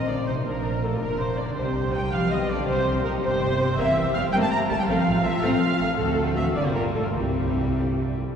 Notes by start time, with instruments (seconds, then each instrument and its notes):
Already playing: double bass section A1, violin section C5
0.08 cello section D3, violin section C4, viola section D5
0.25 cello section C3, violin section D#4, viola section C5
0.45 double bass section A#1, cello section A#2, violin section A#3 D4 A#4, viola section A#4
0.63 violin section D4
0.83 cello section A2, violin section F4, viola section A4
1.01 double bass section F1, cello section A#2, violin section D4, viola section A#4
1.19 cello section C3, violin section A#3, viola section C5
1.37 cello section D3, violin section D4, viola section D5
1.55 double bass section C2, cello section C3, violin section G3 C4 G4, viola section C5
1.74 violin section C4
1.92 cello section G3, violin section D#4, viola section G5
2.11 double bass section B1, cello section F3, violin section G3, viola section F5
2.30 cello section D#3, violin section B3, viola section D#5
2.49 cello section D3, violin section D4, viola section D5
2.68 double bass section C2, cello section C3, violin section G3, viola section C5
2.86 violin section C4
3.04 cello section A#2, violin section D#4, viola section A#4
3.22 double bass section G1, cello section C3, violin section C4, viola section C5
3.41 violin section G3
3.58 violin section C4
3.77 double bass section G1, cello section E3, violin section A#3 C4 G4, viola section E5
3.96 double bass section G1, violin section A#3
4.14 double bass section G1, cello section F3, violin section G3 A#3, viola section F5
4.32 double bass section G1, cello section G3, violin section A#3 C4, viola section G5
4.41 cello section A3, viola section A5
4.50 cello section A#3, viola section A#5
4.68 double bass section G1, violin section G3 A#3, cello section A3, viola section A5
4.78 cello section G3, viola section G5
4.87 double bass section A1, cello section F3, violin section A3 C4 F4, viola section F5
5.06 double bass section A1, violin section A3
5.24 double bass section A1, cello section E3, violin section A3, viola section E5
5.42 double bass section A1, cello section F3, violin section A3 C4, viola section F5
5.79 double bass section A1, violin section A3
5.98 double bass section D2, cello section A2, violin section A3 C4 F#4, viola section A4
6.36 cello section E3, viola section E5
6.55 double bass section G1, cello section D3, violin section G3 A#3 F4, viola section D5
6.66 cello section C3, viola section C5
6.74 cello section A#2, viola section A#4
6.94 cello section A2, viola section A4
7.04 cello section A#2, viola section A#4
7.16 double bass section C2, cello section G2, violin section G3 C4 E4, viola section G4